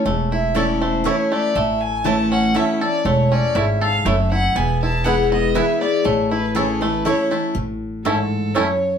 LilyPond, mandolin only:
\new Staff \with { instrumentName = "Mandolin" } { \time 3/4 \key a \major \tempo 4 = 120 r4 <a e' cis'' a''>8 r8 <a e' cis'' a''>8 r8 | r4 <a e' cis'' a''>8 r8 <a e' cis'' a''>8 r8 | r4 <a e' cis'' a''>8 r8 <a e' cis'' a''>8 r8 | r4 <b e' b' gis''>8 r8 <b e' b' gis''>8 r8 |
r4 <a e' cis'' a''>8 r8 <a e' cis'' a''>8 r8 | r4 <a e' cis'' a''>8 r8 <a e' cis'' a''>8 r8 | }